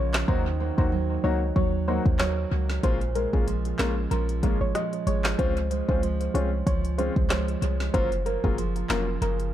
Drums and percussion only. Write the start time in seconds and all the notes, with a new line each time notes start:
0.14 snare, clap
0.28 kick
0.78 kick
1.56 kick
2.06 kick
2.19 snare, clap
2.70 snare
2.83 kick, closed hi-hat
3.01 closed hi-hat
3.15 closed hi-hat
3.33 kick
3.48 closed hi-hat
3.65 closed hi-hat
3.79 snare, clap, closed hi-hat
4.11 closed hi-hat
4.29 closed hi-hat
4.43 kick, closed hi-hat
4.75 cross-stick, closed hi-hat
4.93 closed hi-hat
5.07 closed hi-hat
5.24 snare, clap
5.39 kick, closed hi-hat
5.57 closed hi-hat
5.71 closed hi-hat
5.89 kick
6.03 closed hi-hat
6.21 closed hi-hat
6.35 closed hi-hat
6.67 kick, closed hi-hat
6.85 closed hi-hat
6.99 closed hi-hat
7.16 kick
7.30 cross-stick, snare, clap, closed hi-hat
7.48 closed hi-hat
7.62 closed hi-hat
7.80 snare
7.94 kick, closed hi-hat
8.12 closed hi-hat
8.26 closed hi-hat
8.44 kick
8.58 closed hi-hat
8.76 closed hi-hat
8.89 snare, clap, closed hi-hat
9.22 closed hi-hat
9.40 closed hi-hat